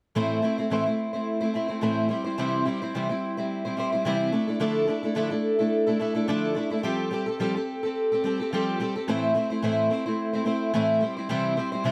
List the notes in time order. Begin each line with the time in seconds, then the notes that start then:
0.15 A2 E3 A3 C4 E4 C5
0.42 A3 C4 E4 C5
0.58 A3 C4 E4 C5
0.70 A2 E3 A3 C4 E4 C5
0.86 A3 C4 E4 C5
1.13 A3 C4 E4 C5
1.41 A3 C4 E4 C5
1.54 A3 C4 E4 C5
1.68 A3 C4 E4 C5
1.81 A2 E3 A3 C4 E4 C5
2.09 G3 C4 E4 C5
2.24 G3 C4 E4 C5
2.38 C3 E3 G3 C4 E4 C5
2.65 G3 C4 E4 C5
2.82 G3 C4 E4 C5
2.95 C3 E3 G3 C4 E4 C5
3.09 G3 C4 E4 C5
3.37 G3 C4 E4 C5
3.65 G3 C4 E4 C5
3.77 G3 C4 E4 C5
3.92 G3 C4 E4 C5
4.05 C3 E3 G3 C4 E4 C5
4.32 A3 D4 E4 A4
4.47 A3 D4 E4 A4
4.60 D3 F3 A3 D4 E4 A4
4.87 A3 D4 E4 A4
5.03 A3 D4 E4 A4
5.15 D3 F3 A3 D4 E4 A4
5.30 A3 D4 E4 A4
5.59 A3 D4 E4 A4
5.87 A3 D4 E4 A4
5.99 A3 D4 E4 A4
6.15 A3 D4 E4 A4
6.28 D3 F3 A3 D4 E4 A4
6.55 A3 D4 E4 A4
6.70 A3 D4 E4 A4
6.83 F3 G3 C4 G4 A4
7.11 G3 C4 G4 A4
7.26 C4 G4 A4
7.40 F3 G3 C4 G4 A4
7.56 C4 G4 A4
7.83 C4 G4 A4
8.12 C4 G4 A4
8.24 G3 C4 G4 A4
8.40 C4 G4 A4
8.53 F3 G3 C4 G4 A4
8.80 G3 C4 G4 A4
8.96 C4 G4 A4
9.08 A2 E3 A3 C4 E4 C5
9.34 A3 C4 E4 C5
9.50 A3 C4 E4 C5
9.62 A2 E3 A3 C4 E4 C5
9.90 A3 C4 E4 C5
10.06 A3 C4 E4 C5
10.33 A3 C4 E4 C5
10.45 A3 C4 E4 C5
10.74 A2 E3 A3 C4 E4 C5
11.01 G3 C4 E4 C5
11.17 G3 C4 E4 C5
11.29 C3 E3 G3 C4 E4 C5
11.57 G3 C4 E4 C5
11.72 G3 C4 E4 C5
11.84 C3 E3 G3 C4 E4 C5